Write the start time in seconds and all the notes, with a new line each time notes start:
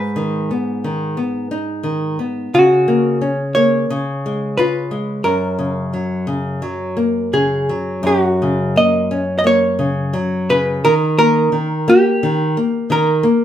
Already playing: G#2 B4
0.16 D#3
0.51 B3
0.84 D#3
1.17 B3
1.51 D#4
1.83 D#3
2.19 B3
2.54 C#3 F#4
2.88 A#3
3.21 C#4
3.55 A#3 C#5
3.90 C#3
4.26 G#3
4.57 F4 B4
4.91 G#3
5.24 F#2 A#4
5.59 C#3
5.93 F#3
6.27 C#3
6.62 F#3
6.97 A#3
7.33 C#3 G#4
7.69 F#3
8.03 F#2 F#4
8.42 C#3
8.76 A#3 D#5
9.11 C#4
9.39 D#5
9.44 A#3 C#5
9.79 C#3
10.13 F#3
10.50 C#3 B4
10.85 D#3 A#4
11.18 A#3 A#4
11.52 D#3
11.88 A#3 G4
12.23 D#3
12.57 A#3
12.90 D#3 A#4
13.23 A#3